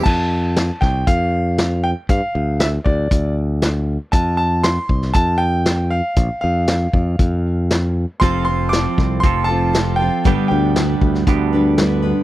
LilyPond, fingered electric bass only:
\new Staff \with { instrumentName = "Fingered electric bass" } { \clef bass \time 4/4 \key f \major \tempo 4 = 118 f,4. c,8 f,2 | g,16 r16 d,4 d,8 d,2 | f,4. c,8 f,2 | bes,,16 r16 f,4 f,8 f,2 |
f,,4. c,8 f,,2 | g,,16 r16 d,4 d,8 d,2 | }